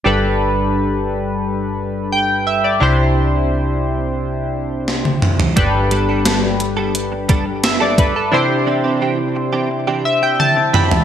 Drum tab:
HH |----------------|----------------|x-x-x-x-x-x-x-x-|----------------|
SD |----------------|------------o---|----o-------o---|----------------|
T1 |----------------|-------------o--|----------------|------------o---|
T2 |----------------|--------------o-|----------------|--------------o-|
FT |----------------|---------------o|----------------|---------------o|
BD |----------------|----------------|o---------o---o-|----------------|